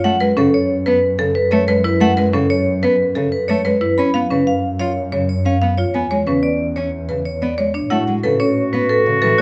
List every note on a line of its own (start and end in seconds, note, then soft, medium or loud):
0.04 3.87 F#2 medium
0.04 0.17 A3 medium
0.04 0.26 F#5 medium
0.20 0.33 G#3 medium
0.20 0.42 B4 medium
0.37 0.49 C#3 medium
0.37 0.58 C#4 medium
0.37 0.58 A4 medium
0.54 0.75 C#5 medium
0.86 0.99 B3 medium
0.86 1.07 B4 medium
1.19 1.31 C#3 soft
1.19 1.40 A4 medium
1.35 1.57 B4 medium
1.51 1.64 A3 medium
1.51 1.73 C#5 medium
1.68 1.80 G#3 medium
1.68 1.89 B4 medium
1.84 2.06 E4 medium
1.84 2.06 B4 medium
2.01 2.13 A3 medium
2.01 2.22 F#5 medium
2.17 2.29 G#3 medium
2.17 2.39 B4 medium
2.33 2.46 C#3 medium
2.33 2.55 C#4 medium
2.33 2.55 A4 medium
2.50 2.71 C#5 medium
2.83 2.95 B3 medium
2.83 3.04 B4 medium
3.15 3.28 C#3 medium
3.15 3.37 A4 medium
3.32 3.53 B4 medium
3.48 3.61 A3 medium
3.48 3.70 C#5 medium
3.65 3.78 G#3 medium
3.65 3.86 B4 medium
3.81 4.02 E4 medium
3.81 4.02 B4 medium
3.98 5.84 F#2 medium
3.98 4.10 C#4 medium
3.98 4.19 B5 medium
4.14 4.27 B3 medium
4.14 4.35 F5 medium
4.30 4.43 C#3 medium
4.30 4.52 C#4 medium
4.30 4.52 B4 medium
4.47 4.68 F5 medium
4.80 4.92 F4 medium
4.80 5.01 C#5 medium
4.80 5.01 F5 medium
5.12 5.25 C#3 soft
5.12 5.34 C#5 medium
5.29 5.50 C#5 medium
5.45 5.58 C#4 medium
5.45 5.67 F5 medium
5.62 5.74 B3 medium
5.62 5.83 F5 medium
5.78 5.99 F4 medium
5.78 5.99 C#5 medium
5.94 7.81 E2 medium
5.94 6.07 B3 medium
5.94 6.16 G#5 medium
6.11 6.23 G#3 medium
6.11 6.32 C#5 medium
6.27 6.39 C#3 medium
6.27 6.49 C#4 medium
6.27 6.48 B4 medium
6.43 6.65 D5 medium
6.76 6.89 C#4 soft
6.76 6.98 C#5 soft
6.76 6.98 C#5 medium
7.09 7.22 C#3 soft
7.09 7.30 B4 medium
7.26 7.47 C#5 medium
7.42 7.54 B3 medium
7.42 7.63 D5 medium
7.58 7.71 G#3 soft
7.58 7.79 C#5 medium
7.74 7.96 D4 soft
7.74 7.96 C#5 medium
7.90 9.42 A2 medium
7.90 8.03 A3 medium
7.90 8.12 E4 medium
7.90 9.42 F#4 medium
7.90 8.12 F#5 medium
8.08 8.20 G#3 medium
8.23 8.36 C#3 medium
8.23 8.45 A4 medium
8.23 8.45 B4 medium
8.40 8.61 C#4 medium
8.40 8.61 C#5 medium
8.73 8.86 B3 medium
8.73 8.94 B4 medium
8.89 9.11 A4 medium
8.89 9.11 B4 medium
9.06 9.18 C#3 medium
9.22 9.35 E3 medium
9.22 9.42 A4 medium
9.22 9.42 B4 medium
9.38 9.42 F#4 medium
9.38 9.42 C#5 medium